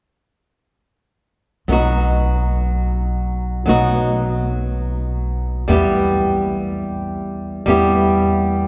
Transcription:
1.68 3.64 B1 medium
1.68 3.64 F#3 medium
1.68 3.65 B3 soft
1.68 3.66 D#4 soft
1.72 3.66 F#4 medium
3.66 5.64 B1 medium
3.66 5.63 F#3 soft
3.66 5.63 B3 soft
3.66 5.64 D#4 soft
3.66 5.65 F#4 medium
5.68 7.64 E2 medium
5.68 7.64 G3 medium
5.68 7.64 B3 soft
5.68 7.65 E4 medium
5.68 7.66 G4 medium
7.66 8.68 E2 medium
7.66 8.68 G3 medium
7.66 8.68 B3 soft
7.66 8.68 E4 soft
7.70 8.68 G4 soft

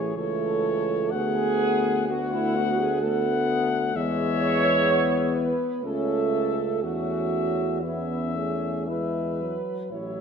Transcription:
0.00 0.12 A1 medium
0.00 0.12 E3 medium
0.00 0.12 A3 medium
0.00 0.16 G#4 medium
0.00 0.12 C#5 medium
0.16 1.14 C#2 medium
0.16 1.14 E3 medium
0.16 1.10 A3 medium
0.16 1.12 A4 medium
0.16 1.13 C#5 medium
1.11 3.95 D2 medium
1.11 2.08 A3 medium
1.11 2.06 B3 medium
1.11 2.07 G#4 loud
1.11 2.07 F#5 medium
2.08 3.00 A3 medium
2.08 3.00 B3 medium
2.08 2.32 F#4 medium
2.08 3.00 F#5 medium
2.32 2.55 E4 medium
2.55 2.78 F#4 medium
2.80 3.02 G#4 medium
3.01 3.98 A3 medium
3.01 3.94 B3 medium
3.01 3.49 A4 medium
3.01 3.98 F#5 medium
3.96 5.52 E2 medium
3.96 5.56 G#3 medium
3.96 5.80 B3 medium
3.96 5.31 C#5 loud
3.96 5.56 E5 medium
5.36 5.84 B4 medium
5.82 6.85 C#2 medium
5.82 6.79 A3 medium
5.82 6.68 C#4 medium
5.82 6.84 A4 medium
5.82 6.79 E5 medium
6.83 9.58 E2 medium
6.83 7.80 A3 soft
6.83 7.81 C#4 medium
6.83 7.82 F#4 medium
6.83 7.80 E5 medium
7.81 8.36 B3 medium
7.81 8.86 C#4 soft
7.81 8.34 E4 medium
7.81 8.85 E5 medium
8.34 8.90 A3 soft
8.34 8.86 G#4 medium
8.86 9.43 G#3 medium
8.86 9.58 E4 soft
8.86 9.91 B4 medium
8.86 9.56 E5 soft
9.41 9.92 F#3 soft
9.91 10.21 A1 medium
9.91 10.21 F#3 soft
9.91 10.21 E4 medium
9.91 10.21 C#5 medium
9.91 10.21 E5 medium

